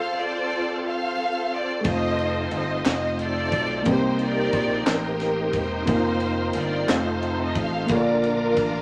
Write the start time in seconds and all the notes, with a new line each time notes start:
Already playing: C4 F4 A4 C5 F5
0.18 F4 A4 D5
0.87 A4 C5 F5
1.54 D5
1.81 F1 G#3 A3 C4 D#4 F4 C5, ride
1.85 D#4 F4 A4 C5 D#5, kick
1.91 A3
2.19 ride
2.51 G1, ride
2.56 D#5
2.85 F1 D#5, snare, clap, ride
3.19 ride
3.23 A4 D5
3.52 B1, kick, ride
3.83 C2 C3 A#3 C4 G4 C5, kick, ride
3.87 D#4 G4 C5
3.91 C5
4.19 ride
4.23 G4 A#4 D5
4.52 A#1, kick, ride
4.86 A1, snare, clap, ride
4.92 D#4 G4 A#4
5.20 snare, ride
5.53 E1, kick, ride
5.58 D#4 C5
5.86 F1 A#3 C4 D#4 F4 C5, kick, ride
6.20 ride
6.53 G1, ride
6.59 D5
6.87 F1 G#3 A3 C4 D#4 F4 C5, snare, clap, ride
6.91 D#4 A4 C5
6.97 A3
7.23 ride
7.44 D#5
7.55 A1, kick, ride
7.61 F5
7.86 A#1 D3 A#3 D4 F4 C5, kick, ride
7.90 D4 F4 A#4 C#5
7.95 A#4 D5
8.00 D5
8.24 ride
8.56 A1, kick, ride